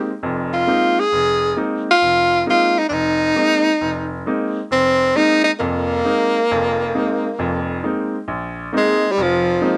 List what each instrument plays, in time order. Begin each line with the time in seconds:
0.23 upright piano F1 F2
0.53 tenor saxophone F4
0.67 upright piano G#3 A#3 C4 D#4
1.00 tenor saxophone G#4
1.13 upright piano F1
1.56 upright piano G#3 A#3 C4 D#4
1.91 tenor saxophone F4
2.02 upright piano F1
2.46 upright piano G#3 A#3 C4 D#4
2.50 tenor saxophone F4
2.79 tenor saxophone D#4
2.89 upright piano F1, tenor saxophone D4
2.93 tenor saxophone D#4
3.36 upright piano G#3 A#3 C4 D#4
3.81 upright piano F1
4.26 upright piano G#3 A#3 C4 D#4
4.71 upright piano F1, tenor saxophone C4
5.15 upright piano G#3 A#3 C4 D#4, tenor saxophone D#4
5.44 tenor saxophone D#4
5.59 upright piano F1 F2, tenor saxophone A#3
6.05 upright piano G#3 A#3 C4 D#4
6.51 upright piano F1 F2
6.95 upright piano G#3 A#3 C4 D#4
7.39 upright piano F1 F2
7.83 upright piano G#3 A#3 C4 D#4
8.28 upright piano A#1
8.72 upright piano G#3 A#3 C4 D#4
8.77 tenor saxophone G#3
9.12 tenor saxophone G3
9.18 upright piano F1
9.22 tenor saxophone F3
9.61 upright piano G#3 A#3 C4 D#4